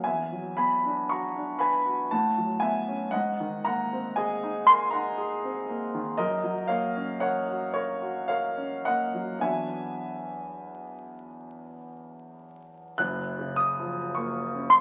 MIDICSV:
0, 0, Header, 1, 2, 480
1, 0, Start_track
1, 0, Tempo, 1027397
1, 26, Time_signature, 3, 2, 24, 8
1, 1945, Tempo, 1013514
1, 3385, Tempo, 1075269
1, 3865, Tempo, 1167315
1, 6550, End_track
2, 0, Start_track
2, 0, Title_t, "Grand piano"
2, 0, Program_c, 0, 0
2, 0, Control_c, 0, 64, 127
2, 17, Note_on_c, 0, 80, 89
2, 22, Note_on_c, 0, 40, 49
2, 23, Note_on_c, 0, 76, 62
2, 34, Control_c, 0, 64, 0
2, 90, Control_c, 0, 64, 127
2, 151, Note_on_c, 0, 54, 50
2, 250, Note_off_c, 0, 76, 0
2, 263, Note_off_c, 0, 80, 0
2, 265, Note_on_c, 0, 83, 97
2, 270, Note_on_c, 0, 80, 67
2, 272, Note_on_c, 0, 59, 47
2, 344, Note_off_c, 0, 54, 0
2, 398, Note_on_c, 0, 62, 48
2, 465, Note_off_c, 0, 59, 0
2, 495, Note_off_c, 0, 80, 0
2, 510, Note_off_c, 0, 83, 0
2, 511, Note_on_c, 0, 85, 87
2, 520, Note_on_c, 0, 66, 46
2, 520, Note_on_c, 0, 82, 65
2, 588, Note_off_c, 0, 62, 0
2, 637, Note_on_c, 0, 62, 45
2, 707, Note_off_c, 0, 66, 0
2, 738, Note_off_c, 0, 82, 0
2, 742, Note_on_c, 0, 83, 96
2, 749, Note_on_c, 0, 71, 51
2, 749, Note_on_c, 0, 80, 75
2, 750, Note_off_c, 0, 85, 0
2, 824, Note_off_c, 0, 62, 0
2, 868, Note_on_c, 0, 66, 45
2, 939, Note_off_c, 0, 71, 0
2, 966, Note_off_c, 0, 40, 0
2, 969, Note_off_c, 0, 80, 0
2, 982, Note_off_c, 0, 83, 0
2, 986, Note_off_c, 0, 66, 0
2, 986, Note_on_c, 0, 81, 86
2, 989, Note_on_c, 0, 78, 62
2, 991, Note_on_c, 0, 45, 61
2, 994, Control_c, 0, 64, 0
2, 1059, Control_c, 0, 64, 127
2, 1111, Note_on_c, 0, 54, 47
2, 1207, Note_off_c, 0, 78, 0
2, 1214, Note_on_c, 0, 80, 97
2, 1222, Note_off_c, 0, 81, 0
2, 1223, Note_on_c, 0, 76, 68
2, 1224, Note_on_c, 0, 59, 52
2, 1297, Note_off_c, 0, 54, 0
2, 1347, Note_on_c, 0, 61, 52
2, 1414, Note_off_c, 0, 59, 0
2, 1445, Note_off_c, 0, 76, 0
2, 1450, Note_off_c, 0, 45, 0
2, 1453, Note_on_c, 0, 78, 93
2, 1458, Note_off_c, 0, 80, 0
2, 1459, Note_on_c, 0, 75, 77
2, 1460, Note_on_c, 0, 44, 62
2, 1465, Note_off_c, 0, 61, 0
2, 1470, Control_c, 0, 64, 0
2, 1542, Control_c, 0, 64, 127
2, 1588, Note_on_c, 0, 51, 54
2, 1686, Note_off_c, 0, 75, 0
2, 1700, Note_off_c, 0, 78, 0
2, 1703, Note_on_c, 0, 82, 102
2, 1709, Note_on_c, 0, 78, 79
2, 1710, Note_on_c, 0, 58, 57
2, 1780, Note_off_c, 0, 51, 0
2, 1836, Note_on_c, 0, 60, 57
2, 1901, Note_off_c, 0, 58, 0
2, 1931, Note_off_c, 0, 78, 0
2, 1943, Note_on_c, 0, 80, 90
2, 1945, Note_off_c, 0, 82, 0
2, 1949, Note_on_c, 0, 75, 76
2, 1950, Note_on_c, 0, 68, 60
2, 2024, Note_off_c, 0, 60, 0
2, 2073, Note_on_c, 0, 63, 58
2, 2141, Note_off_c, 0, 68, 0
2, 2172, Note_off_c, 0, 75, 0
2, 2180, Note_off_c, 0, 80, 0
2, 2183, Note_on_c, 0, 84, 114
2, 2187, Note_on_c, 0, 80, 87
2, 2193, Note_on_c, 0, 70, 65
2, 2262, Note_off_c, 0, 63, 0
2, 2297, Note_on_c, 0, 82, 95
2, 2298, Note_off_c, 0, 80, 0
2, 2304, Note_off_c, 0, 84, 0
2, 2306, Note_on_c, 0, 63, 56
2, 2306, Note_on_c, 0, 78, 69
2, 2381, Note_off_c, 0, 70, 0
2, 2425, Note_on_c, 0, 68, 58
2, 2496, Note_off_c, 0, 63, 0
2, 2551, Note_on_c, 0, 60, 53
2, 2615, Note_off_c, 0, 68, 0
2, 2643, Note_off_c, 0, 78, 0
2, 2658, Note_off_c, 0, 82, 0
2, 2668, Note_on_c, 0, 58, 56
2, 2737, Note_off_c, 0, 60, 0
2, 2787, Note_on_c, 0, 51, 58
2, 2855, Note_off_c, 0, 58, 0
2, 2880, Note_off_c, 0, 44, 0
2, 2898, Note_on_c, 0, 75, 106
2, 2902, Note_on_c, 0, 70, 87
2, 2903, Note_off_c, 0, 51, 0
2, 2906, Note_on_c, 0, 42, 67
2, 2907, Control_c, 0, 64, 0
2, 2977, Control_c, 0, 64, 127
2, 3022, Note_on_c, 0, 54, 58
2, 3125, Note_off_c, 0, 70, 0
2, 3135, Note_on_c, 0, 77, 95
2, 3139, Note_off_c, 0, 75, 0
2, 3141, Note_on_c, 0, 73, 66
2, 3143, Note_on_c, 0, 58, 59
2, 3214, Note_off_c, 0, 54, 0
2, 3272, Note_on_c, 0, 61, 56
2, 3337, Note_off_c, 0, 58, 0
2, 3369, Note_off_c, 0, 73, 0
2, 3383, Note_off_c, 0, 77, 0
2, 3385, Note_on_c, 0, 78, 94
2, 3388, Note_on_c, 0, 73, 78
2, 3390, Note_on_c, 0, 70, 53
2, 3460, Note_off_c, 0, 61, 0
2, 3513, Note_on_c, 0, 66, 60
2, 3576, Note_off_c, 0, 70, 0
2, 3606, Note_off_c, 0, 73, 0
2, 3621, Note_off_c, 0, 78, 0
2, 3623, Note_on_c, 0, 73, 93
2, 3629, Note_on_c, 0, 70, 65
2, 3699, Note_off_c, 0, 66, 0
2, 3749, Note_on_c, 0, 66, 54
2, 3852, Note_off_c, 0, 70, 0
2, 3863, Note_off_c, 0, 73, 0
2, 3865, Note_on_c, 0, 77, 92
2, 3869, Note_on_c, 0, 73, 67
2, 3872, Note_on_c, 0, 70, 54
2, 3937, Note_off_c, 0, 66, 0
2, 3987, Note_on_c, 0, 61, 51
2, 4053, Note_off_c, 0, 70, 0
2, 4082, Note_off_c, 0, 73, 0
2, 4096, Note_off_c, 0, 77, 0
2, 4101, Note_on_c, 0, 78, 104
2, 4106, Note_on_c, 0, 75, 72
2, 4110, Note_on_c, 0, 58, 52
2, 4170, Note_off_c, 0, 61, 0
2, 4220, Note_on_c, 0, 54, 44
2, 4294, Note_off_c, 0, 58, 0
2, 4316, Note_off_c, 0, 54, 0
2, 4322, Note_off_c, 0, 42, 0
2, 4322, Note_on_c, 0, 40, 51
2, 4322, Note_on_c, 0, 54, 38
2, 4324, Note_off_c, 0, 75, 0
2, 4327, Note_on_c, 0, 59, 41
2, 4329, Note_on_c, 0, 62, 43
2, 4331, Note_on_c, 0, 80, 91
2, 4335, Note_on_c, 0, 66, 44
2, 4337, Note_on_c, 0, 76, 65
2, 4338, Note_off_c, 0, 78, 0
2, 4343, Control_c, 0, 64, 0
2, 4416, Control_c, 0, 64, 127
2, 5293, Note_off_c, 0, 76, 0
2, 5307, Note_off_c, 0, 80, 0
2, 5772, Note_off_c, 0, 40, 0
2, 5772, Note_off_c, 0, 54, 0
2, 5774, Note_off_c, 0, 59, 0
2, 5775, Note_off_c, 0, 62, 0
2, 5778, Note_off_c, 0, 66, 0
2, 5798, Note_on_c, 0, 90, 107
2, 5801, Control_c, 0, 64, 0
2, 5802, Note_on_c, 0, 30, 69
2, 5806, Note_on_c, 0, 42, 60
2, 5885, Control_c, 0, 64, 127
2, 5964, Note_on_c, 0, 49, 54
2, 6037, Note_off_c, 0, 90, 0
2, 6038, Note_on_c, 0, 87, 106
2, 6133, Note_on_c, 0, 53, 56
2, 6214, Note_off_c, 0, 49, 0
2, 6274, Note_off_c, 0, 87, 0
2, 6278, Note_on_c, 0, 85, 76
2, 6286, Note_on_c, 0, 58, 54
2, 6376, Note_off_c, 0, 53, 0
2, 6442, Note_on_c, 0, 61, 51
2, 6505, Note_on_c, 0, 84, 108
2, 6510, Note_off_c, 0, 85, 0
2, 6529, Note_off_c, 0, 58, 0
2, 6550, Note_off_c, 0, 30, 0
2, 6550, Note_off_c, 0, 42, 0
2, 6550, Note_off_c, 0, 61, 0
2, 6550, Note_off_c, 0, 84, 0
2, 6550, End_track
0, 0, End_of_file